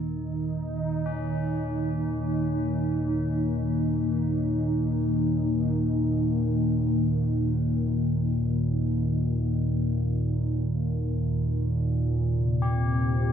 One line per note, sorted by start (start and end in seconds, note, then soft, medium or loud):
0.00 13.33 D#2 medium
0.00 13.33 A#2 medium
0.00 12.22 D#3 medium
0.00 13.33 A#3 medium
0.00 13.33 D#4 medium
1.06 7.17 C#4 medium
12.24 13.33 C3 medium
12.62 13.33 G4 medium